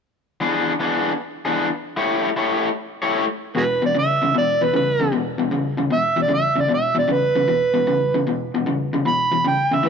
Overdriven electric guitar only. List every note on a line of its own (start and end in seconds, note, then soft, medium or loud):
0.41 0.71 E3 medium
0.41 0.72 B3 medium
0.41 0.72 D4 medium
0.41 0.72 G#4 medium
0.80 1.11 E3 medium
0.80 1.11 B3 medium
0.80 1.11 D4 medium
0.80 1.11 G#4 medium
1.45 1.67 E3 medium
1.45 1.67 B3 medium
1.45 1.67 D4 medium
1.45 1.66 G#4 medium
1.97 2.28 A3 medium
1.97 2.28 E4 medium
1.97 2.28 G4 medium
1.97 2.29 C#5 medium
2.37 2.68 A3 medium
2.37 2.68 E4 medium
2.37 2.68 G4 medium
2.37 2.68 C#5 medium
3.02 3.24 A3 medium
3.02 3.24 E4 medium
3.02 3.24 G4 medium
3.02 3.23 C#5 medium
3.55 3.79 E2 medium
3.55 3.79 B2 medium
3.82 3.93 E2 medium
3.82 3.94 B2 medium
3.95 4.19 E2 medium
3.95 4.19 C#3 medium
4.22 4.33 E2 medium
4.22 4.33 C#3 medium
4.34 4.58 E2 medium
4.34 4.58 B2 medium
4.61 4.72 E2 medium
4.61 4.73 B2 medium
4.74 4.97 E2 medium
4.74 4.97 C#3 medium
5.00 5.11 E2 medium
5.00 5.11 C#3 medium
5.12 5.36 E2 medium
5.12 5.37 B2 medium
5.38 5.50 E2 medium
5.38 5.51 B2 medium
5.51 5.75 E2 medium
5.51 5.76 C#3 medium
5.77 5.89 E2 medium
5.77 5.90 C#3 medium
5.90 6.15 E2 medium
5.90 6.15 B2 medium
6.16 6.27 E2 medium
6.16 6.29 B2 medium
6.28 6.53 E2 medium
6.28 6.54 C#3 medium
6.56 6.67 E2 medium
6.56 6.68 C#3 medium
6.69 6.93 E2 medium
6.69 6.93 B2 medium
6.95 7.07 E2 medium
6.95 7.07 B2 medium
7.08 7.32 E2 medium
7.08 7.33 C#3 medium
7.35 7.47 E2 medium
7.35 7.47 C#3 medium
7.48 7.72 E2 medium
7.48 7.72 B2 medium
7.74 7.86 E2 medium
7.74 7.86 B2 medium
7.87 8.11 E2 medium
7.87 8.11 C#3 medium
8.14 8.25 E2 medium
8.14 8.26 C#3 medium
8.27 8.51 E2 medium
8.27 8.51 B2 medium
8.54 8.65 E2 medium
8.54 8.65 B2 medium
8.66 8.90 E2 medium
8.66 8.90 C#3 medium
8.93 9.04 E2 medium
8.93 9.05 C#3 medium
9.05 9.29 E2 medium
9.05 9.29 B2 medium
9.32 9.43 E2 medium
9.32 9.43 B2 medium
9.44 9.68 E2 medium
9.44 9.69 C#3 medium
9.71 9.83 E2 medium
9.71 9.83 C#3 medium
9.83 9.89 A2 medium
9.83 9.89 E3 medium